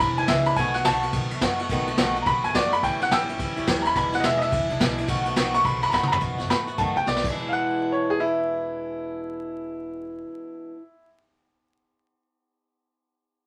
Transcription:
0.00 upright bass E1, steel-string acoustic guitar E3 G#3 D4 E4, upright piano B5
0.17 upright bass B1, steel-string acoustic guitar E3 G#3 D4 E4, upright piano G#5, ride
0.28 upright bass C#2, steel-string acoustic guitar E2 B2 E3 G#3 D4 E4, upright piano E5, kick, snare, ride
0.45 steel-string acoustic guitar E3 G#3 D4 E4, upright piano B5, ride
0.56 upright bass B1, steel-string acoustic guitar B2 D#3 A3 B3 F#4, upright piano G#5, kick, ride
0.74 steel-string acoustic guitar B3 F#4, upright piano F#5, snare, ride
0.78 steel-string acoustic guitar A3
0.85 upright bass B1, steel-string acoustic guitar B2 D#3 A3 B3 F#4, upright piano A5, snare, ride
1.03 steel-string acoustic guitar A3 B3 F#4, ride
1.13 upright bass B1, steel-string acoustic guitar D#3 A3 B3, kick, ride
1.17 steel-string acoustic guitar F#4
1.30 upright bass F#2, steel-string acoustic guitar A3 B3 F#4, ride
1.41 upright bass F#2, steel-string acoustic guitar B2 D#3 A3 B3 F#4, kick, snare, ride
1.59 steel-string acoustic guitar A3 B3 F#4, ride
1.69 upright bass B1, steel-string acoustic guitar B2 D#3 A3 B3 F#4, kick, ride
1.87 steel-string acoustic guitar A3 B3 F#4, ride
1.97 upright bass B1, steel-string acoustic guitar B2 D#3 A3 B3 F#4, snare, ride
2.15 steel-string acoustic guitar A3 B3 F#4, ride
2.22 upright piano A#5, ride
2.26 upright bass B1, steel-string acoustic guitar D#3 A3 B3 F#4, upright piano B5, kick
2.44 upright bass F#2, steel-string acoustic guitar A3 B3 F#4, upright piano G#5, ride
2.54 upright bass F#2, steel-string acoustic guitar B2 D#3 A3 B3 F#4, upright piano D5, kick, snare, ride
2.72 steel-string acoustic guitar A3 B3 F#4, upright piano B5, ride
2.83 upright bass A1, steel-string acoustic guitar A2 E3 G3 C#4 E4, upright piano G5, kick, ride
3.01 steel-string acoustic guitar G3 C#4 E4, upright piano F#5, snare, ride
3.11 upright bass A1, steel-string acoustic guitar A2 E3 G3 C#4 E4, upright piano G5 E6, snare, ride
3.29 steel-string acoustic guitar G3 C#4 E4, ride
3.39 upright bass A1, steel-string acoustic guitar E3 G3 C#4 E4, kick, ride
3.57 upright bass E2, steel-string acoustic guitar G3 C#4 E4, ride
3.67 upright bass D#2, steel-string acoustic guitar A2 E3 G3 C#4 E4, kick, snare, ride
3.82 steel-string acoustic guitar E4, upright piano A#5, ride
3.87 steel-string acoustic guitar G3 C#4, upright piano B5
3.96 upright bass E1, steel-string acoustic guitar E2 B2 E3 G#3 D4 E4, upright piano B5, kick, ride
4.12 steel-string acoustic guitar E3 G#3 D4 E4, upright piano F#5, snare, ride
4.20 upright bass E1, steel-string acoustic guitar E2 B2 E3, upright piano D#5, snare, ride
4.24 steel-string acoustic guitar G#3 D4 E4, upright piano E5
4.37 steel-string acoustic guitar E4, upright piano D#5, ride
4.42 steel-string acoustic guitar E3 G#3 D4, upright piano E5
4.51 upright bass E1, steel-string acoustic guitar E3 G#3 D4 E4, kick, ride
4.69 upright bass B1, steel-string acoustic guitar E3 G#3 D4 E4, ride
4.80 upright bass B1, steel-string acoustic guitar E2 B2 E3 G#3 D4 E4, kick, snare, ride
4.98 steel-string acoustic guitar E3 G#3 D4 E4, ride
5.08 upright bass B1, steel-string acoustic guitar B2 D#3 A3 B3 F#4, kick, ride
5.25 steel-string acoustic guitar A3 B3 F#4, ride
5.36 upright bass B1, steel-string acoustic guitar B2 D#3 A3 B3 F#4, snare, ride
5.54 steel-string acoustic guitar A3 B3 F#4, upright piano C#6, ride
5.64 upright bass B1, steel-string acoustic guitar D#3 A3 B3 F#4, upright piano B5, kick, ride
5.82 upright bass F#2, steel-string acoustic guitar A3 B3 F#4, upright piano B5, ride
5.89 steel-string acoustic guitar B2 D#3 A3 B3 F#4, upright piano A#5, kick, snare
5.93 upright bass F#2, upright piano B5
6.03 mid tom
6.08 steel-string acoustic guitar B3 F#4, upright piano A#5
6.12 steel-string acoustic guitar A3, upright piano B5, floor tom
6.20 upright bass B1, steel-string acoustic guitar B2 D#3 A3 B3 F#4, kick, closed hi-hat
6.38 upright bass F#2, steel-string acoustic guitar A3 B3 F#4, snare, closed hi-hat
6.48 upright bass A2, steel-string acoustic guitar D#3 A3 B3 F#4, upright piano B5, snare, closed hi-hat
6.67 steel-string acoustic guitar A3 B3 F#4, closed hi-hat
6.78 upright bass F#2, steel-string acoustic guitar B2 D#3 A3 B3 F#4, upright piano A5, kick, closed hi-hat
6.96 upright bass D#2, steel-string acoustic guitar A3 B3 F#4, upright piano G5, closed hi-hat
7.06 upright bass B1, steel-string acoustic guitar D#3 A3 B3 F#4, upright piano D5, snare
7.16 snare
7.22 upright bass E1, steel-string acoustic guitar E2 B2, kick, crash
7.27 steel-string acoustic guitar E3 G#3 D4
7.31 steel-string acoustic guitar E4
7.49 upright piano F5
7.53 upright piano F#5
7.92 upright piano C#5
8.10 upright piano G#4
8.20 upright piano E4

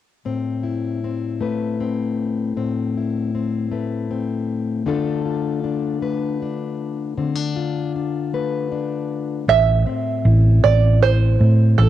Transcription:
0.25 steel-string acoustic guitar A2 C4
0.63 steel-string acoustic guitar E4
1.04 steel-string acoustic guitar C4
1.41 steel-string acoustic guitar A3 B4
1.80 steel-string acoustic guitar C4
2.57 steel-string acoustic guitar A2 C4
2.97 steel-string acoustic guitar E4
3.35 steel-string acoustic guitar C4
3.71 steel-string acoustic guitar A3 B4
4.11 steel-string acoustic guitar C4
4.86 steel-string acoustic guitar D3 A3 D4 F4 A4
5.26 steel-string acoustic guitar F4
5.64 steel-string acoustic guitar D4
6.01 steel-string acoustic guitar A3 B4
6.42 steel-string acoustic guitar D4
7.17 steel-string acoustic guitar D3 C4
7.35 steel-string acoustic guitar D4
7.56 steel-string acoustic guitar F4
7.96 steel-string acoustic guitar D4
8.33 steel-string acoustic guitar A3 B4
8.72 steel-string acoustic guitar D4
9.48 fingered electric bass A1, steel-string acoustic guitar A2, five-string banjo E5
9.87 steel-string acoustic guitar C4
10.25 fingered electric bass A1, steel-string acoustic guitar E4
10.64 fingered electric bass A1, steel-string acoustic guitar E3, five-string banjo D5
11.02 steel-string acoustic guitar E4, five-string banjo C5
11.40 fingered electric bass A2, steel-string acoustic guitar C4
11.77 fingered electric bass A1, steel-string acoustic guitar A2, five-string banjo A4

